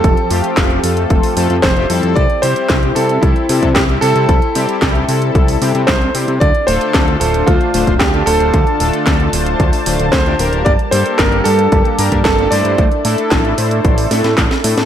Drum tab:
HH |xxoxxxoxxooxxxox|xxoxxxoxxxoxxxox|xxoxxxoxxooxxxox|xxoxxxoxxxoxxxox|
CP |----x-------x---|----x-------x---|----x-------x---|----x-------x---|
SD |----o-------o---|----o-------o---|----o-------o---|----o-------o---|
BD |o---o---o---o---|o---o---o--oo---|o---o---o---o---|o---o---o--oo---|

HH |xxoxxxoxxooxxxox|xxoxxxoxxxoxxxox|xxoxxxoxxooxxxox|
CP |----x-------x---|----x-------x---|----x-------x---|
SD |----o-------o---|----o-------o---|----o-----oooo-o|
BD |o---o---o---o---|o---o---o--oo---|o---o---o---o---|